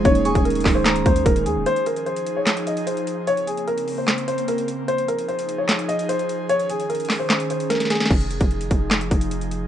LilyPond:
<<
  \new Staff \with { instrumentName = "Synth bell" } { \time 4/4 \key f \minor \tempo 4 = 149 r8 des'''4. bes''4 r4 | r1 | r1 | r1 |
r1 | r1 | }
  \new Staff \with { instrumentName = "Grand piano" } { \time 4/4 \key f \minor des''8 aes'8 bes'8. c''8. c''8 bes'8 aes'8 | c''8 bes'8 c''8. des''8. ees''8 c''4 | des''8 aes'8 bes'8. c''8. c''8 bes'8 r8 | c''8 bes'8 c''8. des''8. ees''8 c''4 |
des''8 aes'8 bes'8. c''8. c''8 bes'8 aes'8 | r1 | }
  \new Staff \with { instrumentName = "Analog synth pad" } { \time 4/4 \key f \minor << { aes'1 | aes'1 | c'1 | aes'1~ |
aes'1~ | aes'1 | } \\ { <ees des'>1 | <f ees'>1 | <des bes>1 | <f ees'>1 |
<ees des'>1 | <f ees'>1 | } >> }
  \new Staff \with { instrumentName = "Synth keys" } { \time 4/4 \key f \minor <aes bes des' ees'>1 | r1 | r1 | r1 |
r1 | r1 | }
  \new Staff \with { instrumentName = "808-style bass" } { \clef bass \time 4/4 \key f \minor ees,,8. ees,,8. des,,4 ees,8 ees,,8 ees,16 ees,,16 | r1 | r1 | r1 |
r1 | f,,8. f,,8. f,,4 f,,4. | }
  \new DrumStaff \with { instrumentName = "Drums" } \drummode { \time 4/4 <hh bd>16 hh16 hh16 <hh bd>16 hh32 hh32 hh32 hh32 <hc hho bd sn>8 <hc hh sn>16 hh16 <hh bd>16 hh16 <hh bd>16 hh16 hh8 | hh16 hh16 hh16 hh16 hh16 hh16 hh8 <hc hh sn>16 hh16 hh16 hh16 hh16 hh16 hh8 | hh16 hh16 hh16 hh16 hh16 hh16 hho8 <hc hh sn>16 hh16 hh16 hh16 hh16 hh16 hh8 | hh16 hh16 hh16 hh16 hh16 hh16 hh8 <hc hh sn>16 hh16 hh16 hh16 hh16 hh16 hh8 |
hh16 hh16 hh16 hh16 hh32 hh32 hh32 hh32 <hc hho sn>8 <hc hh sn>16 hh16 hh16 hh16 <hh sn>32 sn32 <hh sn>32 sn32 <hh sn>32 sn32 sn32 sn32 | <cymc bd>16 hh16 hh16 <hh bd>16 hh16 hh16 <hh bd>8 <hc hh sn>16 hh16 <hh bd>16 hh16 hh16 hh16 hh8 | }
>>